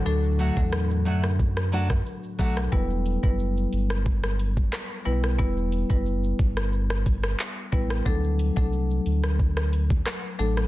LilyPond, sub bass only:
\new Staff \with { instrumentName = "Sub bass" } { \clef bass \time 4/4 \key e \minor \tempo 4 = 90 d,8. e,8. fis,4. r8 b,,8 | e,,8. fis,,8. g,,4. r8 b,,8 | e,,8. fis,,8. g,,4. r8 a,,8 | d,8. c,8. d,4. r8 a,,8 | }